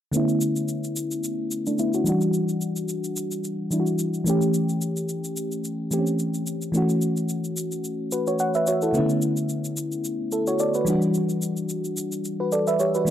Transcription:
0.12 D3 A3 B3 C#4, shaker
0.17 E4
0.29 shaker
0.41 shaker
0.56 shaker
0.68 shaker
0.84 shaker
0.96 shaker
1.11 shaker
1.24 shaker
1.51 shaker
1.66 A3 D4, shaker
1.78 B3 E4, shaker
1.94 C#4 F#4, shaker
2.04 E3 G3 D4, shaker
2.09 F#4
2.21 shaker
2.34 shaker
2.49 shaker
2.61 shaker
2.76 shaker
2.89 shaker
3.04 shaker
3.16 shaker
3.31 shaker
3.44 shaker
3.71 E3 G3 D4 E4, shaker
3.80 F#4
3.86 shaker
3.99 shaker
4.14 shaker
4.24 E3 A3 C#4, shaker
4.30 G4
4.42 shaker
4.54 shaker
4.69 shaker
4.81 shaker
4.97 shaker
5.09 shaker
5.24 shaker
5.37 shaker
5.52 shaker
5.64 shaker
5.91 E3 A3 C4 G4, shaker
5.99 C#4
6.07 shaker
6.19 shaker
6.34 shaker
6.47 shaker
6.62 shaker
6.72 E3 A3 C#4, shaker
6.77 F#4
6.89 shaker
7.02 shaker
7.17 shaker
7.29 shaker
7.44 shaker
7.57 shaker
7.72 shaker
7.84 shaker
8.12 F#4 B4, shaker
8.27 F#4 C#5, shaker
8.39 C#5 F#5, shaker
8.54 B4 E5, shaker
8.67 F#4 C#5, shaker
8.82 E4 A4, shaker
8.92 C#3 A3 B3 C#4, shaker
8.98 D3 E4
9.09 shaker
9.22 shaker
9.37 shaker
9.49 shaker
9.65 shaker
9.77 shaker
9.92 shaker
10.05 shaker
10.32 E4 A4, shaker
10.47 F#4 C#5, shaker
10.59 A4 D5, shaker
10.74 F#4 B4, shaker
10.85 E3 G3 D4, shaker
10.90 F#4
11.02 shaker
11.14 shaker
11.29 shaker
11.42 shaker
11.57 shaker
11.69 shaker
11.85 shaker
11.97 shaker
12.12 shaker
12.25 shaker
12.40 F#4 B4
12.52 A4 D5, shaker
12.67 B4 E5, shaker
12.79 G4 C#5, shaker
12.95 F#4 B4, shaker
13.05 E3 A3, shaker

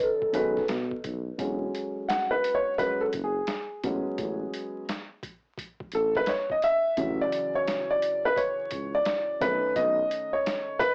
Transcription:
Already playing: D#3 C#4 F#4 G#4 A4
0.00 A4, closed hi-hat
0.22 kick
0.33 B1 D#3 G#3 C#4 F#4 B4, closed hi-hat
0.57 kick, snare
0.68 B2, snare, closed hi-hat
0.92 kick
1.04 B1, kick, closed hi-hat
1.38 E1 F#3 G#3 C#4, kick, closed hi-hat
1.75 closed hi-hat
2.09 F#5, snare, closed hi-hat
2.31 B4
2.44 closed hi-hat
2.55 C#5
2.78 F#3 G#3 C#4 B4, kick, closed hi-hat
3.01 A4
3.13 F#1, kick, closed hi-hat
3.24 G#4
3.47 snare, closed hi-hat
3.83 A1 F#3 G#3 B3 C#4, kick, closed hi-hat
4.18 A1, kick, closed hi-hat
4.54 closed hi-hat
4.89 snare, closed hi-hat
5.23 kick, closed hi-hat
5.58 kick, closed hi-hat
5.80 kick
5.92 A1 A4, closed hi-hat
6.15 B4, kick, snare
6.26 C#5, snare, closed hi-hat
6.50 D#5, kick
6.62 E5, closed hi-hat
6.97 A1 C#3 E3 F#3, kick, closed hi-hat
7.21 D5
7.32 closed hi-hat
7.55 C#5
7.68 snare, closed hi-hat
7.91 D5
8.02 closed hi-hat
8.25 B4
8.36 C#5, kick, closed hi-hat
8.71 C#2, kick, closed hi-hat
8.95 D5
9.05 snare, closed hi-hat
9.40 B1 D#3 A3 C#4 B4, kick, closed hi-hat
9.76 B1 D#5, kick, closed hi-hat
10.11 closed hi-hat
10.33 C#5
10.46 snare, closed hi-hat
10.79 B4, kick, closed hi-hat

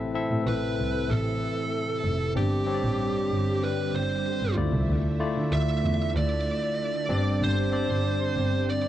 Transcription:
Already playing: A2 C3 E3 A3 C4 E4 A4 E5
0.14 C4 E4 A4 E5
0.30 A2
0.46 A1 B4
0.78 C2
1.09 A1 A4
2.04 F1
2.35 G1 G2 D3 G3 C4 D4 G4 D5
2.66 C4 D4 G4 C#5
2.74 D5
2.83 A1
3.30 G1
3.63 B4
3.93 G1 C5
4.41 G1
4.56 D2 D3 A3 E4 F4 D5 E5
4.72 C2
4.88 D2
5.20 A3 E4 F4 D5
5.36 D3
5.51 D2 E5
5.83 E2
6.14 D2 D5
7.09 G1 G2 G3 C4 D4 G4 D5
7.41 G1 C5
7.72 C4 D4 G4 D5
7.89 G1
8.36 G1
8.70 D5

